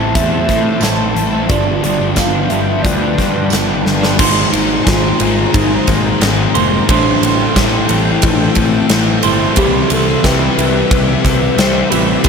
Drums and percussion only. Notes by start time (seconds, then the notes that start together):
0.15 kick, closed hi-hat
0.49 kick, snare, closed hi-hat
0.81 snare, closed hi-hat, tambourine
1.16 closed hi-hat
1.49 kick, closed hi-hat
1.84 closed hi-hat
2.16 kick, snare, closed hi-hat, tambourine
2.50 closed hi-hat
2.85 kick, closed hi-hat
3.18 kick, snare, closed hi-hat
3.50 snare, closed hi-hat, tambourine
3.86 snare
4.03 snare
4.19 kick, crash
4.53 ride
4.87 kick, snare, ride
5.20 ride
5.54 kick, ride
5.87 kick, snare, ride
6.21 snare, ride
6.55 ride
6.89 kick, ride
7.23 ride
7.56 kick, snare, ride
7.89 ride
8.22 kick, ride
8.55 kick, ride
8.89 snare, ride
9.23 ride
9.56 kick, ride
9.90 ride
10.24 kick, snare, ride
10.59 ride
10.91 kick, ride
11.25 kick, snare, ride
11.58 snare, ride
11.92 ride
12.24 kick, ride